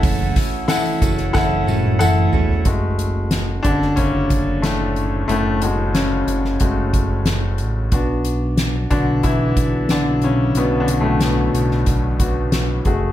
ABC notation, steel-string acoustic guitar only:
X:1
M:4/4
L:1/8
Q:1/4=91
K:F#m
V:1 name="Steel-string acoustic guitar"
[F,,C,E,A,CF] [E,A,CF] [E,A,CF] [E,A,CF] [F,,C,E,A,CF] [E,A,CF] [E,A,CF] [E,A,CF] | z8 | z8 | z8 |
z8 |]